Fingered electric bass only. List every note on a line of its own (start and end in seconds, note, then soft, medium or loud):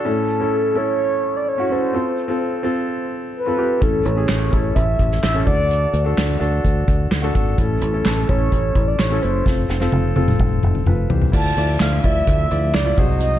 3.82 4.01 A1 medium
4.06 4.25 A1 medium
4.29 4.48 A1 medium
4.53 4.72 A1 medium
4.76 4.95 A1 loud
4.99 5.19 A1 medium
5.23 5.43 A1 medium
5.47 5.85 D2 medium
5.93 6.13 D2 loud
6.18 6.37 D2 medium
6.41 6.60 D2 medium
6.65 6.84 D2 medium
6.88 7.07 D2 medium
7.11 7.30 D2 medium
7.35 7.54 G#1 medium
7.58 7.77 A1 medium
7.82 8.01 A1 medium
8.05 8.24 A1 medium
8.29 8.48 A1 medium
8.52 8.71 A1 medium
8.75 8.95 A1 medium
9.00 9.19 A1 medium
9.23 9.42 F#1 medium
9.46 9.65 F1 medium
9.69 9.88 F1 medium
9.92 10.12 F1 medium
10.16 10.36 F1 medium
10.40 10.59 F1 medium
10.63 10.83 F1 medium
10.86 11.06 F1 medium
11.10 11.29 C2 medium
11.33 11.53 D2 medium
11.57 11.76 D2 medium
11.81 12.00 D2 medium
12.04 12.23 D2 medium
12.27 12.47 D2 medium
12.52 12.71 D2 medium
12.75 12.94 C#2 medium
12.98 13.37 C2 medium